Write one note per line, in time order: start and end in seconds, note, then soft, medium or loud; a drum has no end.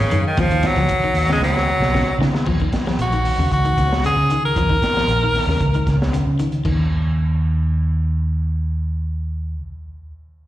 0.00 0.26 C#3 loud
0.00 snare soft
0.11 0.22 F#2 loud
0.11 0.33 D#3 medium
0.11 closed hi-hat medium
0.27 0.42 D#3 medium
0.37 0.68 D#2 loud
0.37 0.49 F3 medium
0.37 0.68 F3 loud
0.37 kick loud
0.37 snare soft
0.37 closed hi-hat medium
0.51 0.72 D#3 medium
0.51 closed hi-hat soft
0.63 1.30 F#3 loud
0.63 kick medium
0.63 snare medium
0.63 closed hi-hat medium
0.76 0.87 C#2 medium
0.76 0.98 F3 medium
0.76 snare soft
0.76 closed hi-hat soft
0.89 kick medium
0.89 closed hi-hat medium
1.02 1.24 D#3 medium
1.02 muted fingered electric bass stroke soft
1.14 1.35 D#2 medium
1.14 open hi-hat medium
1.30 1.51 C#3 medium
1.30 1.43 G#3 loud
1.30 snare medium
1.40 1.71 C#2 medium
1.40 2.17 F#3 loud
1.40 snare medium
1.56 muted clean electric guitar stroke medium
1.56 snare medium
1.80 2.01 B1 medium
1.80 snare medium
1.94 2.15 C#3 medium
1.94 kick medium
1.94 snare medium
2.19 2.29 C#3 loud
2.19 2.41 D#3 medium
2.19 snare medium
2.35 snare medium
2.46 2.66 D#2 medium
2.46 2.58 F3 medium
2.46 kick medium
2.46 crash medium
2.60 2.82 D#3 medium
2.60 kick medium
2.60 closed hi-hat soft
2.72 kick medium
2.72 snare medium
2.72 closed hi-hat medium
2.86 3.08 F3 medium
2.86 snare medium
2.86 closed hi-hat soft
2.99 3.29 A#1 medium
2.99 3.49 F#4 medium
2.99 closed hi-hat medium
3.12 3.34 D#3 medium
3.12 closed hi-hat soft
3.25 open hi-hat medium
3.38 3.48 D#2 medium
3.38 3.60 C#3 medium
3.52 3.71 C#2 loud
3.52 4.01 F#4 medium
3.52 kick medium
3.52 closed hi-hat medium
3.65 3.86 D#3 medium
3.65 closed hi-hat soft
3.77 4.07 C#2 loud
3.77 kick medium
3.77 snare soft
3.77 closed hi-hat medium
3.93 snare medium
4.04 4.25 C#3 medium
4.04 4.41 G#4 loud
4.04 closed hi-hat medium
4.17 4.37 C#3 loud
4.30 4.52 D#3 medium
4.30 closed hi-hat soft
4.45 5.97 A#4 loud
4.56 4.76 D#2 loud
4.56 4.67 F3 medium
4.56 kick medium
4.56 closed hi-hat medium
4.69 4.91 D#3 medium
4.69 kick medium
4.82 kick medium
4.82 snare medium
4.82 closed hi-hat medium
4.97 5.17 F3 medium
4.97 snare medium
5.08 5.38 A#1 medium
5.08 closed hi-hat medium
5.23 5.43 D#3 medium
5.35 snare soft
5.35 open hi-hat medium
5.47 5.57 D#2 medium
5.47 5.69 C#3 medium
5.47 snare soft
5.60 5.80 C#2 loud
5.60 kick medium
5.60 closed hi-hat medium
5.74 5.95 D#3 medium
5.74 closed hi-hat soft
5.87 6.17 C#2 medium
5.87 kick medium
5.87 snare soft
5.87 closed hi-hat soft
6.02 snare medium
6.13 6.34 C#3 medium
6.13 closed hi-hat medium
6.26 6.46 C#3 medium
6.39 6.60 D#3 medium
6.39 closed hi-hat soft
6.52 closed hi-hat soft
6.65 9.69 D#2 medium
6.65 6.81 D#3 medium
6.65 kick medium
6.65 crash medium